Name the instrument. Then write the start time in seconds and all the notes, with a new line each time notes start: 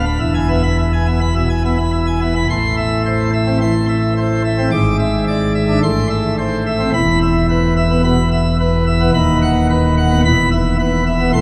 pipe organ
Already playing: D1 D2
0.06 B5
0.20 E1 E2 E5
0.35 G#5
0.49 B3 E5
0.63 B5
0.78 E5
0.93 G#5
1.07 B3 E5
1.21 B5
1.35 B2 E5
1.50 G#5
1.65 B3 E5
1.78 B5
1.93 E5
2.07 G#5
2.21 B3 E5
2.35 B5
2.50 A1 A2 C6
2.77 E5
3.06 C5
3.33 E5
3.47 C4
3.62 E3 C6
3.89 E5
4.18 C5
4.45 E5
4.58 C4
4.71 G#1 G#2 D6
5.00 E5
5.27 D5
5.55 E5
5.68 D4
5.83 A1 A2 C6
6.10 E5
6.38 C5
6.66 E5
6.80 C4
6.93 E1 E2 B5
7.22 E5
7.49 B4
7.77 E5
7.91 B3
8.04 B2 B5
8.32 E5
8.60 B4
8.87 E5
9.01 B3
9.14 D#1 D#2 B5
9.42 F#5
9.70 B4
9.97 F#5
10.11 B3
10.25 E1 E2 B5
10.52 E5
10.79 B4
11.07 E5
11.20 B3
11.33 A1 A2 C6